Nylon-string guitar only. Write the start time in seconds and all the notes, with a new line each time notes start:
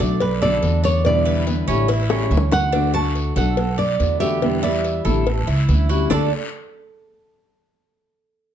Already playing: A4
0.21 B4
0.42 D5
0.85 C#5
1.06 D5
2.31 E5
2.53 F#5
2.94 A5
3.37 F#5
3.79 D5
4.20 E5
4.64 D5
6.12 A4